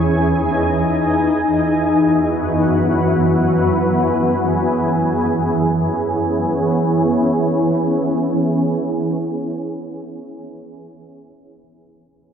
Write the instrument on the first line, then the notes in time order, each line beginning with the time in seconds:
ambient pad
Already playing: E2 E3 D#4 G#4
1.81 F#2 E3 B3 F#4
3.76 G#4
5.71 E3 B3 C#4 G#4